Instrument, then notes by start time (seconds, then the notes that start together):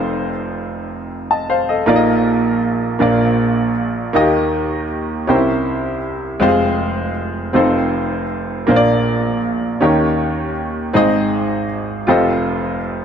grand piano
Already playing: F1 F2 C4 D#4 F4 A4 C5
1.31 D#5 A5
1.50 C5 F5
1.69 A4 D#5
1.86 A#1 A#2 A#3 D#4 F4 A#4 D5
1.96 D#5
2.99 A#1 A#2 A#3 D4 F4 A#4 D5
4.13 D#2 D#3 A#3 D#4 F4 A#4 D#5
4.21 G4
5.27 C2 C3 C#4 D#4 G4 A#4 C5
5.35 E4
6.40 F1 F2 G#3 C4 F4 G4 C5
6.48 G#4
7.53 F1 F2 C4 D#4 F4 A4 C5
8.67 A#1 A#2 A#3 D4 F4 A#4 C5
8.76 D5
9.81 D#2 D#3 C#4 D#4 G4 A#4 C#5
10.93 G#1 G#2 C4 D#4 G#4 C5 D#5
12.07 F1 F2 F4 G4 A4 C5 D#5